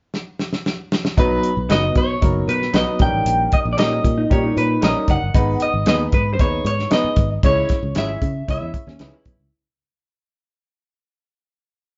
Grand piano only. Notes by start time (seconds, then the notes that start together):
1.17 F#3 B3 D#4 B4
1.70 F#3 B3 D#4 B4
2.21 F#3 B3 D#4 A#4
2.73 F#3 B3 D#4 B4
2.99 G3 C#4 D#4 A#4
3.77 G3 C#4 D#4 G4
4.30 G3 C#4 D#4 A#4
4.82 G3 C#4 D#4 A#4
5.34 G#3 B3 D#4 B4
5.86 G#3 B3 D#4 B4
6.39 G#3 B3 D#4 B4
6.90 G#3 B3 D#4 B4
7.44 G#3 C#4 E4 C#5
7.95 G#3 C#4 E4 C#5
8.48 G#3 C#4 E4 C#5
9.00 G#3 C#4 E4 B4